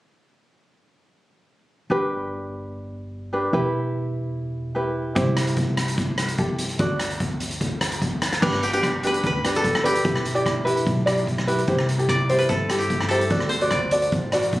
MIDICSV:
0, 0, Header, 1, 5, 480
1, 0, Start_track
1, 0, Key_signature, 1, "major"
1, 0, Tempo, 407609
1, 2230, Time_signature, 4, 2, 24, 8
1, 17193, End_track
2, 0, Start_track
2, 0, Title_t, "Koto"
2, 0, Program_c, 0, 107
2, 10165, Note_on_c, 0, 67, 73
2, 10236, Note_off_c, 0, 67, 0
2, 10284, Note_on_c, 0, 67, 73
2, 10677, Note_on_c, 0, 71, 81
2, 10906, Note_off_c, 0, 71, 0
2, 10910, Note_on_c, 0, 71, 75
2, 11261, Note_on_c, 0, 69, 70
2, 11603, Note_off_c, 0, 67, 0
2, 11608, Note_on_c, 0, 67, 67
2, 13002, Note_off_c, 0, 71, 0
2, 13502, Note_off_c, 0, 69, 0
2, 14010, Note_off_c, 0, 67, 0
2, 14241, Note_on_c, 0, 74, 91
2, 14585, Note_on_c, 0, 71, 84
2, 14708, Note_on_c, 0, 69, 80
2, 15057, Note_on_c, 0, 67, 65
2, 15404, Note_off_c, 0, 69, 0
2, 15409, Note_on_c, 0, 69, 74
2, 15888, Note_on_c, 0, 72, 78
2, 15959, Note_off_c, 0, 71, 0
2, 16126, Note_off_c, 0, 74, 0
2, 16152, Note_on_c, 0, 74, 68
2, 17193, Note_off_c, 0, 67, 0
2, 17193, Note_off_c, 0, 69, 0
2, 17193, Note_off_c, 0, 72, 0
2, 17193, Note_off_c, 0, 74, 0
2, 17193, End_track
3, 0, Start_track
3, 0, Title_t, "Ukulele"
3, 0, Program_c, 1, 24
3, 2244, Note_on_c, 1, 67, 60
3, 2249, Note_on_c, 1, 62, 52
3, 2254, Note_on_c, 1, 71, 69
3, 3886, Note_off_c, 1, 62, 0
3, 3888, Note_off_c, 1, 67, 0
3, 3891, Note_off_c, 1, 71, 0
3, 3918, Note_on_c, 1, 67, 39
3, 3925, Note_on_c, 1, 71, 46
3, 3926, Note_on_c, 1, 62, 42
3, 4151, Note_off_c, 1, 71, 0
3, 4154, Note_off_c, 1, 67, 0
3, 4156, Note_off_c, 1, 62, 0
3, 4159, Note_on_c, 1, 64, 57
3, 4166, Note_on_c, 1, 67, 56
3, 4168, Note_on_c, 1, 71, 63
3, 5569, Note_off_c, 1, 64, 0
3, 5572, Note_off_c, 1, 71, 0
3, 5573, Note_off_c, 1, 67, 0
3, 5592, Note_on_c, 1, 67, 40
3, 5603, Note_on_c, 1, 64, 35
3, 5604, Note_on_c, 1, 71, 47
3, 6055, Note_off_c, 1, 64, 0
3, 6056, Note_off_c, 1, 67, 0
3, 6066, Note_on_c, 1, 67, 58
3, 6072, Note_on_c, 1, 64, 60
3, 6078, Note_off_c, 1, 71, 0
3, 6083, Note_on_c, 1, 72, 56
3, 7484, Note_off_c, 1, 64, 0
3, 7484, Note_off_c, 1, 67, 0
3, 7486, Note_off_c, 1, 72, 0
3, 7517, Note_on_c, 1, 67, 42
3, 7526, Note_on_c, 1, 69, 50
3, 7528, Note_on_c, 1, 64, 32
3, 7995, Note_off_c, 1, 69, 0
3, 7998, Note_off_c, 1, 67, 0
3, 7999, Note_off_c, 1, 64, 0
3, 8001, Note_on_c, 1, 66, 63
3, 8008, Note_on_c, 1, 69, 59
3, 8013, Note_on_c, 1, 74, 66
3, 9880, Note_off_c, 1, 66, 0
3, 9884, Note_off_c, 1, 69, 0
3, 9884, Note_off_c, 1, 74, 0
3, 9913, Note_on_c, 1, 62, 74
3, 9919, Note_on_c, 1, 67, 64
3, 9924, Note_on_c, 1, 71, 74
3, 10131, Note_off_c, 1, 62, 0
3, 10135, Note_off_c, 1, 67, 0
3, 10135, Note_off_c, 1, 71, 0
3, 10283, Note_on_c, 1, 67, 67
3, 10290, Note_on_c, 1, 62, 55
3, 10291, Note_on_c, 1, 71, 66
3, 10497, Note_off_c, 1, 62, 0
3, 10497, Note_off_c, 1, 67, 0
3, 10500, Note_off_c, 1, 71, 0
3, 10642, Note_on_c, 1, 62, 64
3, 10650, Note_on_c, 1, 67, 57
3, 10652, Note_on_c, 1, 71, 63
3, 10928, Note_off_c, 1, 62, 0
3, 10930, Note_off_c, 1, 71, 0
3, 10932, Note_off_c, 1, 67, 0
3, 11123, Note_on_c, 1, 62, 63
3, 11127, Note_on_c, 1, 67, 51
3, 11133, Note_on_c, 1, 71, 58
3, 11408, Note_off_c, 1, 62, 0
3, 11410, Note_off_c, 1, 67, 0
3, 11410, Note_off_c, 1, 71, 0
3, 11586, Note_on_c, 1, 71, 65
3, 11588, Note_on_c, 1, 62, 54
3, 11599, Note_on_c, 1, 67, 47
3, 11736, Note_off_c, 1, 62, 0
3, 11737, Note_off_c, 1, 67, 0
3, 11738, Note_off_c, 1, 71, 0
3, 11829, Note_on_c, 1, 67, 53
3, 11834, Note_on_c, 1, 64, 54
3, 11836, Note_on_c, 1, 71, 67
3, 12049, Note_off_c, 1, 64, 0
3, 12049, Note_off_c, 1, 67, 0
3, 12052, Note_off_c, 1, 71, 0
3, 12183, Note_on_c, 1, 67, 62
3, 12190, Note_on_c, 1, 74, 83
3, 12192, Note_on_c, 1, 64, 65
3, 12406, Note_off_c, 1, 67, 0
3, 12408, Note_off_c, 1, 64, 0
3, 12409, Note_off_c, 1, 74, 0
3, 12539, Note_on_c, 1, 71, 86
3, 12546, Note_on_c, 1, 64, 75
3, 12554, Note_on_c, 1, 67, 59
3, 12837, Note_off_c, 1, 71, 0
3, 12838, Note_off_c, 1, 64, 0
3, 12839, Note_off_c, 1, 67, 0
3, 13023, Note_on_c, 1, 74, 70
3, 13032, Note_on_c, 1, 64, 61
3, 13041, Note_on_c, 1, 67, 66
3, 13319, Note_off_c, 1, 74, 0
3, 13321, Note_off_c, 1, 64, 0
3, 13322, Note_off_c, 1, 67, 0
3, 13511, Note_on_c, 1, 71, 82
3, 13516, Note_on_c, 1, 64, 69
3, 13523, Note_on_c, 1, 67, 47
3, 13659, Note_off_c, 1, 64, 0
3, 13660, Note_off_c, 1, 71, 0
3, 13661, Note_off_c, 1, 67, 0
3, 13750, Note_on_c, 1, 67, 67
3, 13757, Note_on_c, 1, 72, 80
3, 13758, Note_on_c, 1, 64, 70
3, 13969, Note_off_c, 1, 67, 0
3, 13970, Note_off_c, 1, 64, 0
3, 13972, Note_off_c, 1, 72, 0
3, 14110, Note_on_c, 1, 64, 59
3, 14116, Note_on_c, 1, 69, 58
3, 14119, Note_on_c, 1, 67, 62
3, 14329, Note_off_c, 1, 64, 0
3, 14330, Note_off_c, 1, 69, 0
3, 14333, Note_off_c, 1, 67, 0
3, 14480, Note_on_c, 1, 72, 69
3, 14489, Note_on_c, 1, 64, 60
3, 14491, Note_on_c, 1, 67, 52
3, 14767, Note_off_c, 1, 67, 0
3, 14767, Note_off_c, 1, 72, 0
3, 14768, Note_off_c, 1, 64, 0
3, 14954, Note_on_c, 1, 67, 54
3, 14958, Note_on_c, 1, 64, 53
3, 14960, Note_on_c, 1, 69, 59
3, 15241, Note_off_c, 1, 64, 0
3, 15242, Note_off_c, 1, 67, 0
3, 15245, Note_off_c, 1, 69, 0
3, 15428, Note_on_c, 1, 67, 51
3, 15435, Note_on_c, 1, 72, 62
3, 15437, Note_on_c, 1, 64, 50
3, 15577, Note_off_c, 1, 64, 0
3, 15577, Note_off_c, 1, 67, 0
3, 15579, Note_off_c, 1, 72, 0
3, 15663, Note_on_c, 1, 66, 61
3, 15672, Note_on_c, 1, 69, 60
3, 15678, Note_on_c, 1, 74, 53
3, 15884, Note_off_c, 1, 66, 0
3, 15889, Note_off_c, 1, 69, 0
3, 15890, Note_off_c, 1, 74, 0
3, 16027, Note_on_c, 1, 66, 62
3, 16032, Note_on_c, 1, 69, 51
3, 16035, Note_on_c, 1, 74, 71
3, 16246, Note_off_c, 1, 69, 0
3, 16247, Note_off_c, 1, 66, 0
3, 16250, Note_off_c, 1, 74, 0
3, 16396, Note_on_c, 1, 74, 73
3, 16402, Note_on_c, 1, 69, 61
3, 16406, Note_on_c, 1, 66, 56
3, 16682, Note_off_c, 1, 66, 0
3, 16683, Note_off_c, 1, 69, 0
3, 16684, Note_off_c, 1, 74, 0
3, 16874, Note_on_c, 1, 74, 71
3, 16879, Note_on_c, 1, 69, 54
3, 16884, Note_on_c, 1, 66, 60
3, 17162, Note_off_c, 1, 66, 0
3, 17162, Note_off_c, 1, 69, 0
3, 17163, Note_off_c, 1, 74, 0
3, 17193, End_track
4, 0, Start_track
4, 0, Title_t, "Upright bass"
4, 0, Program_c, 2, 32
4, 2236, Note_on_c, 2, 31, 66
4, 4117, Note_off_c, 2, 31, 0
4, 4157, Note_on_c, 2, 28, 64
4, 6038, Note_off_c, 2, 28, 0
4, 6083, Note_on_c, 2, 36, 65
4, 7962, Note_off_c, 2, 36, 0
4, 8002, Note_on_c, 2, 38, 75
4, 9880, Note_off_c, 2, 38, 0
4, 9927, Note_on_c, 2, 31, 80
4, 10834, Note_off_c, 2, 31, 0
4, 10880, Note_on_c, 2, 38, 77
4, 11790, Note_off_c, 2, 38, 0
4, 11833, Note_on_c, 2, 28, 75
4, 12747, Note_off_c, 2, 28, 0
4, 12797, Note_on_c, 2, 35, 79
4, 13708, Note_off_c, 2, 35, 0
4, 13755, Note_on_c, 2, 36, 84
4, 14667, Note_off_c, 2, 36, 0
4, 14718, Note_on_c, 2, 43, 80
4, 15628, Note_off_c, 2, 43, 0
4, 15669, Note_on_c, 2, 38, 88
4, 16583, Note_off_c, 2, 38, 0
4, 16631, Note_on_c, 2, 33, 79
4, 17083, Note_off_c, 2, 33, 0
4, 17112, Note_on_c, 2, 35, 72
4, 17193, Note_off_c, 2, 35, 0
4, 17193, End_track
5, 0, Start_track
5, 0, Title_t, "Drums"
5, 6078, Note_on_c, 9, 42, 48
5, 6079, Note_on_c, 9, 36, 92
5, 6195, Note_off_c, 9, 42, 0
5, 6197, Note_off_c, 9, 36, 0
5, 6320, Note_on_c, 9, 37, 71
5, 6320, Note_on_c, 9, 42, 72
5, 6438, Note_off_c, 9, 37, 0
5, 6438, Note_off_c, 9, 42, 0
5, 6444, Note_on_c, 9, 42, 53
5, 6554, Note_off_c, 9, 42, 0
5, 6554, Note_on_c, 9, 42, 52
5, 6560, Note_on_c, 9, 36, 75
5, 6671, Note_off_c, 9, 42, 0
5, 6677, Note_off_c, 9, 36, 0
5, 6799, Note_on_c, 9, 37, 64
5, 6799, Note_on_c, 9, 42, 73
5, 6917, Note_off_c, 9, 37, 0
5, 6917, Note_off_c, 9, 42, 0
5, 6925, Note_on_c, 9, 42, 58
5, 7039, Note_off_c, 9, 42, 0
5, 7039, Note_on_c, 9, 42, 54
5, 7041, Note_on_c, 9, 36, 83
5, 7157, Note_off_c, 9, 42, 0
5, 7158, Note_off_c, 9, 36, 0
5, 7275, Note_on_c, 9, 37, 70
5, 7275, Note_on_c, 9, 42, 68
5, 7392, Note_off_c, 9, 37, 0
5, 7392, Note_off_c, 9, 42, 0
5, 7399, Note_on_c, 9, 42, 49
5, 7514, Note_off_c, 9, 42, 0
5, 7514, Note_on_c, 9, 42, 46
5, 7520, Note_on_c, 9, 36, 74
5, 7632, Note_off_c, 9, 42, 0
5, 7638, Note_off_c, 9, 36, 0
5, 7755, Note_on_c, 9, 42, 68
5, 7873, Note_off_c, 9, 42, 0
5, 7877, Note_on_c, 9, 42, 52
5, 7995, Note_off_c, 9, 42, 0
5, 7996, Note_on_c, 9, 42, 56
5, 8000, Note_on_c, 9, 36, 97
5, 8114, Note_off_c, 9, 42, 0
5, 8118, Note_off_c, 9, 36, 0
5, 8238, Note_on_c, 9, 37, 71
5, 8238, Note_on_c, 9, 42, 73
5, 8356, Note_off_c, 9, 37, 0
5, 8356, Note_off_c, 9, 42, 0
5, 8366, Note_on_c, 9, 42, 50
5, 8481, Note_off_c, 9, 42, 0
5, 8481, Note_on_c, 9, 42, 57
5, 8482, Note_on_c, 9, 36, 76
5, 8599, Note_off_c, 9, 42, 0
5, 8600, Note_off_c, 9, 36, 0
5, 8718, Note_on_c, 9, 42, 70
5, 8836, Note_off_c, 9, 42, 0
5, 8841, Note_on_c, 9, 42, 57
5, 8959, Note_off_c, 9, 42, 0
5, 8960, Note_on_c, 9, 36, 79
5, 8961, Note_on_c, 9, 42, 51
5, 9078, Note_off_c, 9, 36, 0
5, 9078, Note_off_c, 9, 42, 0
5, 9197, Note_on_c, 9, 37, 74
5, 9197, Note_on_c, 9, 42, 66
5, 9315, Note_off_c, 9, 37, 0
5, 9315, Note_off_c, 9, 42, 0
5, 9324, Note_on_c, 9, 42, 51
5, 9441, Note_on_c, 9, 36, 66
5, 9442, Note_off_c, 9, 42, 0
5, 9444, Note_on_c, 9, 42, 50
5, 9558, Note_off_c, 9, 36, 0
5, 9561, Note_off_c, 9, 42, 0
5, 9678, Note_on_c, 9, 37, 67
5, 9678, Note_on_c, 9, 42, 64
5, 9796, Note_off_c, 9, 37, 0
5, 9796, Note_off_c, 9, 42, 0
5, 9805, Note_on_c, 9, 37, 54
5, 9805, Note_on_c, 9, 42, 45
5, 9920, Note_on_c, 9, 36, 94
5, 9922, Note_on_c, 9, 49, 82
5, 9923, Note_off_c, 9, 37, 0
5, 9923, Note_off_c, 9, 42, 0
5, 10038, Note_off_c, 9, 36, 0
5, 10040, Note_off_c, 9, 49, 0
5, 10044, Note_on_c, 9, 37, 63
5, 10161, Note_on_c, 9, 42, 65
5, 10162, Note_off_c, 9, 37, 0
5, 10278, Note_off_c, 9, 42, 0
5, 10287, Note_on_c, 9, 42, 53
5, 10399, Note_on_c, 9, 36, 67
5, 10403, Note_off_c, 9, 42, 0
5, 10403, Note_on_c, 9, 37, 70
5, 10403, Note_on_c, 9, 42, 57
5, 10517, Note_off_c, 9, 36, 0
5, 10521, Note_off_c, 9, 37, 0
5, 10521, Note_off_c, 9, 42, 0
5, 10638, Note_on_c, 9, 42, 71
5, 10756, Note_off_c, 9, 42, 0
5, 10763, Note_on_c, 9, 42, 59
5, 10878, Note_on_c, 9, 36, 85
5, 10880, Note_off_c, 9, 42, 0
5, 10880, Note_on_c, 9, 42, 45
5, 10995, Note_off_c, 9, 36, 0
5, 10998, Note_off_c, 9, 42, 0
5, 11124, Note_on_c, 9, 37, 68
5, 11124, Note_on_c, 9, 42, 69
5, 11241, Note_off_c, 9, 37, 0
5, 11241, Note_off_c, 9, 42, 0
5, 11245, Note_on_c, 9, 42, 49
5, 11357, Note_on_c, 9, 36, 70
5, 11358, Note_off_c, 9, 42, 0
5, 11358, Note_on_c, 9, 42, 54
5, 11475, Note_off_c, 9, 36, 0
5, 11476, Note_off_c, 9, 42, 0
5, 11483, Note_on_c, 9, 37, 77
5, 11601, Note_off_c, 9, 37, 0
5, 11603, Note_on_c, 9, 42, 73
5, 11721, Note_off_c, 9, 42, 0
5, 11722, Note_on_c, 9, 42, 59
5, 11834, Note_on_c, 9, 36, 91
5, 11835, Note_off_c, 9, 42, 0
5, 11835, Note_on_c, 9, 42, 54
5, 11952, Note_off_c, 9, 36, 0
5, 11953, Note_off_c, 9, 42, 0
5, 11959, Note_on_c, 9, 37, 70
5, 12074, Note_on_c, 9, 42, 72
5, 12077, Note_off_c, 9, 37, 0
5, 12192, Note_off_c, 9, 42, 0
5, 12198, Note_on_c, 9, 42, 48
5, 12315, Note_on_c, 9, 36, 73
5, 12316, Note_off_c, 9, 42, 0
5, 12322, Note_on_c, 9, 37, 70
5, 12322, Note_on_c, 9, 42, 57
5, 12433, Note_off_c, 9, 36, 0
5, 12439, Note_off_c, 9, 37, 0
5, 12439, Note_off_c, 9, 42, 0
5, 12563, Note_on_c, 9, 42, 67
5, 12680, Note_off_c, 9, 42, 0
5, 12683, Note_on_c, 9, 42, 53
5, 12796, Note_on_c, 9, 36, 80
5, 12800, Note_off_c, 9, 42, 0
5, 12800, Note_on_c, 9, 42, 45
5, 12913, Note_off_c, 9, 36, 0
5, 12918, Note_off_c, 9, 42, 0
5, 13038, Note_on_c, 9, 37, 72
5, 13038, Note_on_c, 9, 42, 64
5, 13156, Note_off_c, 9, 37, 0
5, 13156, Note_off_c, 9, 42, 0
5, 13161, Note_on_c, 9, 42, 46
5, 13276, Note_on_c, 9, 36, 73
5, 13279, Note_off_c, 9, 42, 0
5, 13284, Note_on_c, 9, 42, 47
5, 13394, Note_off_c, 9, 36, 0
5, 13402, Note_off_c, 9, 42, 0
5, 13406, Note_on_c, 9, 37, 78
5, 13519, Note_on_c, 9, 42, 64
5, 13524, Note_off_c, 9, 37, 0
5, 13637, Note_off_c, 9, 42, 0
5, 13642, Note_on_c, 9, 42, 52
5, 13749, Note_off_c, 9, 42, 0
5, 13749, Note_on_c, 9, 42, 49
5, 13753, Note_on_c, 9, 36, 97
5, 13867, Note_off_c, 9, 42, 0
5, 13871, Note_off_c, 9, 36, 0
5, 13879, Note_on_c, 9, 37, 76
5, 13997, Note_off_c, 9, 37, 0
5, 13998, Note_on_c, 9, 42, 71
5, 14116, Note_off_c, 9, 42, 0
5, 14122, Note_on_c, 9, 42, 52
5, 14235, Note_on_c, 9, 36, 79
5, 14237, Note_off_c, 9, 42, 0
5, 14237, Note_on_c, 9, 37, 69
5, 14237, Note_on_c, 9, 42, 55
5, 14352, Note_off_c, 9, 36, 0
5, 14355, Note_off_c, 9, 37, 0
5, 14355, Note_off_c, 9, 42, 0
5, 14478, Note_on_c, 9, 42, 69
5, 14596, Note_off_c, 9, 42, 0
5, 14602, Note_on_c, 9, 42, 58
5, 14714, Note_on_c, 9, 36, 85
5, 14717, Note_off_c, 9, 42, 0
5, 14717, Note_on_c, 9, 42, 44
5, 14832, Note_off_c, 9, 36, 0
5, 14835, Note_off_c, 9, 42, 0
5, 14951, Note_on_c, 9, 37, 72
5, 14951, Note_on_c, 9, 42, 71
5, 15069, Note_off_c, 9, 37, 0
5, 15069, Note_off_c, 9, 42, 0
5, 15078, Note_on_c, 9, 42, 53
5, 15192, Note_off_c, 9, 42, 0
5, 15192, Note_on_c, 9, 36, 72
5, 15192, Note_on_c, 9, 42, 53
5, 15310, Note_off_c, 9, 36, 0
5, 15310, Note_off_c, 9, 42, 0
5, 15315, Note_on_c, 9, 37, 68
5, 15433, Note_off_c, 9, 37, 0
5, 15433, Note_on_c, 9, 42, 65
5, 15551, Note_off_c, 9, 42, 0
5, 15557, Note_on_c, 9, 42, 55
5, 15664, Note_off_c, 9, 42, 0
5, 15664, Note_on_c, 9, 42, 57
5, 15670, Note_on_c, 9, 36, 101
5, 15781, Note_off_c, 9, 42, 0
5, 15785, Note_on_c, 9, 37, 63
5, 15787, Note_off_c, 9, 36, 0
5, 15903, Note_off_c, 9, 37, 0
5, 15905, Note_on_c, 9, 42, 72
5, 16023, Note_off_c, 9, 42, 0
5, 16028, Note_on_c, 9, 42, 56
5, 16141, Note_off_c, 9, 42, 0
5, 16141, Note_on_c, 9, 37, 73
5, 16141, Note_on_c, 9, 42, 56
5, 16147, Note_on_c, 9, 36, 76
5, 16258, Note_off_c, 9, 37, 0
5, 16258, Note_off_c, 9, 42, 0
5, 16265, Note_off_c, 9, 36, 0
5, 16382, Note_on_c, 9, 42, 66
5, 16500, Note_off_c, 9, 42, 0
5, 16511, Note_on_c, 9, 42, 58
5, 16629, Note_off_c, 9, 42, 0
5, 16629, Note_on_c, 9, 42, 51
5, 16630, Note_on_c, 9, 36, 84
5, 16747, Note_off_c, 9, 42, 0
5, 16748, Note_off_c, 9, 36, 0
5, 16865, Note_on_c, 9, 37, 70
5, 16865, Note_on_c, 9, 42, 69
5, 16983, Note_off_c, 9, 37, 0
5, 16983, Note_off_c, 9, 42, 0
5, 16986, Note_on_c, 9, 42, 55
5, 17104, Note_off_c, 9, 42, 0
5, 17105, Note_on_c, 9, 42, 50
5, 17109, Note_on_c, 9, 36, 69
5, 17193, Note_off_c, 9, 36, 0
5, 17193, Note_off_c, 9, 42, 0
5, 17193, End_track
0, 0, End_of_file